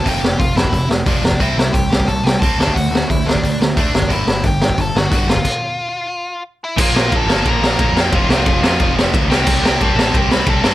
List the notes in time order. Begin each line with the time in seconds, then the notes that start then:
0.05 F1 F2 C3 F3 G4 G5, kick, open hi-hat
0.21 F1 F2 C3, snare
0.38 F1 F2 C3 F4 F5, kick, open hi-hat
0.56 F1 F2 C3 E4 E5, snare
0.64 kick
0.72 F1 F2 C3, kick, open hi-hat
0.88 F1 F2 C3, snare
1.06 F1 F2 C3 F3 D4 D5, kick, open hi-hat
1.22 F1 F2 C3, snare
1.32 kick
1.40 C2 C3 G3 C4 E4 E5, kick, open hi-hat
1.57 C2 C3 G3, snare
1.73 C2 C3 G3 G4 G5, kick, open hi-hat
1.90 C2 C3 G3, snare
2.00 kick
2.07 C2 C3 G3 A4 A5, kick, open hi-hat
2.23 C2 C3 G3 G4 G5, snare
2.39 C2 C3 G3 A4 A5, kick, open hi-hat
2.44 C4
2.58 D2 D3 A3 D4, snare
2.68 kick
2.74 D2 D3 A3 F#4 F#5, kick, open hi-hat
2.90 D2 D3 A3
2.95 snare
3.09 D2 D3 A3 E4 E5, kick, open hi-hat
3.26 D2 D3 A3 D4 D5, snare
3.35 kick
3.43 D2 D3 A3, kick, open hi-hat
3.60 D2 D3 A3, snare
3.76 D2 D3 A3 D4, kick, open hi-hat
3.81 D5
3.94 F#1 D3 A3, snare
4.02 kick
4.08 G1 G2 D3 G3 E4 E5, kick, open hi-hat
4.26 G1 G2 D3, snare
4.43 G1 G2 D3 G4 G5, kick, open hi-hat
4.60 G1 G2 D3, snare
4.69 kick
4.78 G1 G2 D3 A4 A5, kick, open hi-hat
4.95 G1 G2 D3 F#4 F#5, snare
5.11 G1 G2 D3 G3, kick, open hi-hat
5.27 G1 G2 D3 F4 F5, snare
5.37 kick
5.45 kick, crash
6.64 E4 E5
6.77 A#1 A#2 F3 A#3 F4, kick, crash
6.82 F5
6.93 A#1 A#2 F3 A#3, snare
7.11 A#1 A#2 F3 A#3 A4, kick, ride
7.16 A5
7.26 G1 A#2 F3 A#3, snare
7.43 A#1 A#2 F3 A#3 A#4, kick, ride
7.49 A#5
7.61 A#2 F3 A#3, snare
7.79 A#1 A#2 F3 A#3, kick, ride
7.92 F2 A#2 F3 A#3
7.97 G4 G5, snare
8.11 F1 F2 C3 F3 F4 F5, kick, ride
8.29 C2 F2 C3 F3 F4 F5, snare
8.46 F1 F2 C3 F3, kick, ride
8.61 F2 C3 F3, snare
8.79 F1 F2 C3 F3, kick, ride
8.95 F2 C3 F3, snare
9.12 D2 F2 C3 F3, kick, ride
9.28 C2 C3 G3 C4 G4 G5, snare
9.46 C2 C3 G3 C4 G4 G5, kick, crash
9.62 C2 C3 G3 C4, snare
9.80 C2 C3 G3 C4 A4 A5, kick, ride
9.95 A1 C3 G3 C4, snare
10.13 C2 C3 G3 C4 G4 G5, kick, ride
10.28 C3 G3 C4 B4 B5, snare
10.45 C2 C3 G3 C4, kick, ride
10.49 A4 A5
10.62 G2 C3 G3 C4, snare